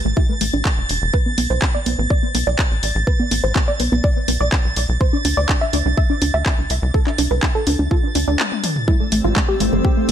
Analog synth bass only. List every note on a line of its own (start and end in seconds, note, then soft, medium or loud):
0.05 0.14 A1 medium
0.41 0.51 A1 medium
0.54 0.63 A1 medium
0.78 0.87 E1 medium
0.90 0.99 E1 medium
1.02 1.11 E1 medium
1.38 1.47 B1 medium
1.50 1.59 B1 medium
1.86 1.96 B1 medium
1.99 2.08 A1 medium
2.35 2.44 B1 medium
2.47 2.56 B1 medium
2.71 2.80 A1 medium
2.83 2.93 A1 medium
2.95 3.05 A1 medium
3.31 3.41 A1 medium
3.44 3.53 A1 medium
3.80 3.89 B1 medium
3.92 4.01 B1 medium
4.28 4.38 B1 medium
4.41 4.50 B1 medium
4.65 4.74 B1 medium
4.76 4.86 B1 loud
4.89 4.98 B1 medium
5.25 5.35 D2 medium
5.37 5.46 D2 medium
5.73 5.83 D2 medium
5.86 5.95 C2 medium
6.22 6.31 D2 medium
6.34 6.43 D2 medium
6.58 6.67 C2 medium
6.70 6.80 C2 medium
6.82 6.92 C2 medium
7.18 7.28 C2 medium
7.31 7.40 C2 medium
7.67 7.76 D2 medium
7.79 7.88 D2 medium
8.15 8.25 D2 medium
8.28 8.37 D2 medium
9.12 9.22 A1 medium
9.24 9.34 A1 medium
9.60 9.70 A1 loud
9.73 9.82 G1 medium